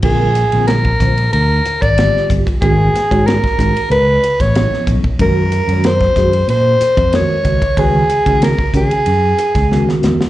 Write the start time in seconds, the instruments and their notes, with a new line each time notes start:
0.03 fingered electric bass A#1, tine electric piano D3 G3 C4 F4 A#4, soprano saxophone G#4, kick, crash
0.35 hi-hat pedal, ride
0.52 fingered electric bass A#1, tine electric piano D3 G3 C4 F4 A#4, ride
0.67 soprano saxophone A#4, snare, ride
0.85 tine electric piano F4 A#4, kick
1.00 fingered electric bass A#1, tine electric piano D3 G3 C4 F4 C5, kick, hi-hat pedal, ride
1.18 tine electric piano F4 A#4, ride
1.33 fingered electric bass D2, soprano saxophone A#4, ride
1.65 muted fingered electric bass stroke, hi-hat pedal, ride
1.82 fingered electric bass G#1, soprano saxophone D5, kick, ride
1.98 tine electric piano D3 G3 C4 F4 G4, snare, ride
2.17 snare
2.30 fingered electric bass G1, kick, hi-hat pedal, ride
2.47 kick, ride
2.61 fingered electric bass G#1, tine electric piano D#3 G#3 C#4 F#4 A#4, soprano saxophone G#4, kick, ride
2.93 tine electric piano F#4 B4, muted fingered electric bass stroke, snare, hi-hat pedal, ride
3.11 fingered electric bass G#2, tine electric piano D#3 G#3 C#4 F#4 C#5, kick, ride
3.26 soprano saxophone A#4, snare, ride
3.44 tine electric piano F#4 A#4, kick, snare
3.58 fingered electric bass G#2, tine electric piano D#3 G#3 C#4 F#4 G#4, kick, hi-hat pedal, ride
3.74 tine electric piano F#4 C#5, muted fingered electric bass stroke, ride
3.90 fingered electric bass C#2, soprano saxophone B4, ride
4.24 hi-hat pedal, ride
4.40 fingered electric bass A1, soprano saxophone C#5, kick, snare, ride
4.55 tine electric piano F3 B3 C#4 E4 A4, snare, ride
4.71 muted fingered electric bass stroke, snare
4.87 fingered electric bass B1, kick, hi-hat pedal, ride
5.04 muted fingered electric bass stroke, kick
5.19 fingered electric bass F#2, tine electric piano D#3 G#3 C#4 F#4 A#4, soprano saxophone A#4, kick, ride
5.52 hi-hat pedal, ride
5.68 fingered electric bass F#2, tine electric piano D#3, ride
5.72 tine electric piano G#3 C#4 F#4 C#5
5.84 soprano saxophone C5, snare, ride
6.01 tine electric piano F#4 A#4, kick, snare
6.16 fingered electric bass F#2, tine electric piano D#3 G#3 C#4 F#4 G#4, kick, snare, hi-hat pedal, ride
6.33 ride
6.48 fingered electric bass A#2, soprano saxophone C5, ride
6.81 muted fingered electric bass stroke, hi-hat pedal, ride
6.97 fingered electric bass F2, kick, ride
7.13 tine electric piano D#3 G#3 C#4 F#4 A#4, soprano saxophone C#5, snare, ride
7.45 fingered electric bass C#2, kick, hi-hat pedal, ride
7.62 kick, ride
7.77 fingered electric bass C#2, tine electric piano D#3 G#3 C#4 F#4 B4, soprano saxophone G#4, kick, ride
8.09 tine electric piano F#4 G#4, muted fingered electric bass stroke, hi-hat pedal, ride
8.26 fingered electric bass C#3, tine electric piano D#3 G#3 C#4 F#4 G#4, kick, ride
8.42 soprano saxophone A#4, snare, ride
8.59 tine electric piano F#4 A#4, kick
8.74 fingered electric bass C#3, tine electric piano D#3 G#3 C#4 F#4 C#5, soprano saxophone G#4, kick, hi-hat pedal, ride
8.91 tine electric piano F#4 B4, muted fingered electric bass stroke, ride
9.06 fingered electric bass F#2, ride
9.38 hi-hat pedal, ride
9.55 fingered electric bass C#2, kick, snare, ride
9.72 tine electric piano D#3 G#3 C#4 F#4 A#4, snare
9.89 muted fingered electric bass stroke, snare
10.03 fingered electric bass E2, snare, hi-hat pedal
10.21 muted fingered electric bass stroke, snare